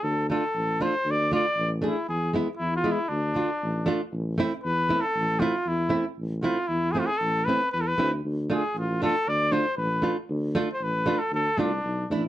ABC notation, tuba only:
X:1
M:2/4
L:1/8
Q:1/4=117
K:none
V:1 name="Tuba" clef=bass
D,,2 A,,,2 | D,,2 A,,,2 | E,,2 E,,2 | D,,2 A,,,2 |
A,,,2 E,,2 | A,,,2 E,,2 | A,,,2 E,,2 | A,,,2 E,, D,, |
D,,2 A,,,2 | D,,2 A,,,2 | D,,2 A,,,2 | D,, C,, B,,, A,,, |]